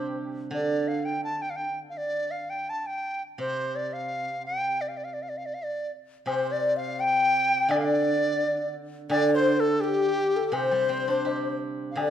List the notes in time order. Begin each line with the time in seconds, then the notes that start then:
Already playing: C3 G3 C4 D4 G4 C5
0.51 D3 D5
0.88 F5
1.05 G5
1.24 A5
1.42 G5
1.50 F5
1.56 G5
1.90 F5
1.97 D5
2.31 F5
2.50 G5
2.70 A5
2.80 A5
2.87 G5
3.38 C3 C5
3.76 D5
3.93 F5
4.46 G5
4.81 D5
4.88 F5
4.97 D5
5.04 F5
5.14 D5
5.22 F5
5.29 D5
5.38 F5
5.46 D5
5.54 F5
5.63 D5
6.26 C3 C5, high woodblock
6.52 D5
6.77 F5
6.99 G5
7.69 D3 D5, high woodblock
7.79 F5
7.84 D5
9.09 D3 D5, high woodblock
9.35 C5
9.60 A4
9.81 G4
10.36 A4
10.52 C3 C5, high woodblock
10.71 G3
10.89 C4
11.08 D4
11.25 G4, low woodblock
11.91 F5
11.96 D3 D5, high woodblock
12.01 D5